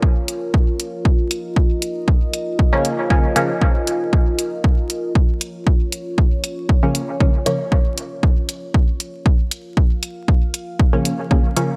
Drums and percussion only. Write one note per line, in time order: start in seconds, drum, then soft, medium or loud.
0.03 kick loud
0.28 closed hi-hat medium
0.54 kick loud
0.80 closed hi-hat medium
1.05 kick loud
1.31 closed hi-hat medium
1.56 kick loud
1.82 closed hi-hat medium
2.08 kick loud
2.33 closed hi-hat medium
2.59 kick loud
2.85 closed hi-hat medium
3.10 kick loud
3.36 closed hi-hat medium
3.62 kick loud
3.87 closed hi-hat medium
4.13 kick loud
4.39 closed hi-hat medium
4.64 kick loud
4.90 closed hi-hat medium
5.15 kick loud
5.41 closed hi-hat medium
5.67 kick loud
5.92 closed hi-hat medium
6.18 kick loud
6.44 closed hi-hat medium
6.69 kick loud
6.95 closed hi-hat medium
7.20 kick loud
7.46 closed hi-hat medium
7.72 kick loud
7.97 closed hi-hat medium
8.23 kick loud
8.49 closed hi-hat medium
8.74 kick loud
9.00 closed hi-hat medium
9.26 kick loud
9.51 closed hi-hat medium
9.77 kick loud
10.03 closed hi-hat medium
10.28 kick loud
10.54 closed hi-hat medium
10.80 kick loud
11.05 closed hi-hat medium
11.31 kick loud
11.56 closed hi-hat medium